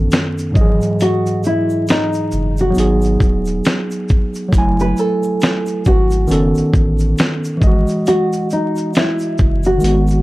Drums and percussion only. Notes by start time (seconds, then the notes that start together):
0.11 snare, closed hi-hat, shaker
0.38 shaker
0.55 kick, shaker
0.81 shaker
1.00 closed hi-hat, shaker
1.26 shaker
1.44 shaker
1.70 shaker
1.88 snare, closed hi-hat, shaker
2.13 shaker
2.14 shaker
2.31 shaker
2.57 shaker
2.75 closed hi-hat, shaker
2.78 shaker
3.02 shaker
3.04 shaker
3.20 kick, shaker
3.45 shaker
3.47 shaker
3.64 snare, closed hi-hat, shaker
3.91 shaker
4.08 kick, shaker
4.34 shaker
4.53 kick, closed hi-hat, shaker
4.79 shaker
4.97 shaker
5.23 shaker
5.41 snare, closed hi-hat, shaker
5.66 shaker
5.68 shaker
5.85 kick, shaker
6.10 shaker
6.28 closed hi-hat, shaker
6.31 shaker
6.55 shaker
6.57 shaker
6.74 kick, shaker
6.99 shaker
7.18 snare, closed hi-hat, shaker
7.44 shaker
7.62 kick, shaker
7.87 shaker
7.89 shaker
8.06 closed hi-hat, shaker
8.33 shaker
8.50 shaker
8.76 shaker
8.77 shaker
8.94 snare, closed hi-hat, shaker
9.19 shaker
9.21 shaker
9.38 kick, shaker
9.63 shaker
9.80 shaker
9.84 closed hi-hat, shaker
10.08 shaker
10.10 shaker